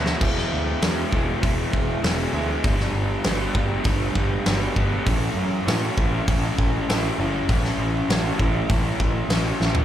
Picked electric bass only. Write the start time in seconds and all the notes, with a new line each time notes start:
Already playing: D2
0.21 E1
0.51 D2
0.82 E2
1.13 E1
1.43 E1
1.73 E1
2.03 E1
2.33 D2
2.65 G1
2.93 G1
3.25 G1
3.55 G1
3.85 G1
4.16 G1
4.46 G1
4.76 G1
5.06 A1
5.35 F#2
5.67 A2
5.97 A1
6.28 A1
6.58 A1
6.88 A1
7.18 F#1
7.49 A1
7.78 A1
8.08 A1
8.39 A1
8.70 A1
9.00 A1
9.29 A1
9.60 A1